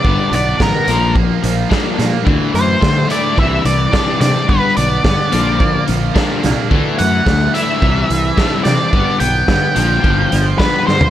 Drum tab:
HH |--x---x---x---x-|--x---x---x---x-|--x---x---x---x-|--x---x---x---x-|
SD |----o-----o-o-o-|----o-------o-o-|----o-------o-o-|----o-------o-o-|
FT |----------------|----------------|----------------|----------------|
BD |o---o---o---o---|o---o---o---o---|o---o---o---o---|o---o---o---o---|

HH |--x---x---x-----|
SD |----o-----o-o-o-|
FT |---------------o|
BD |o---o---o---o---|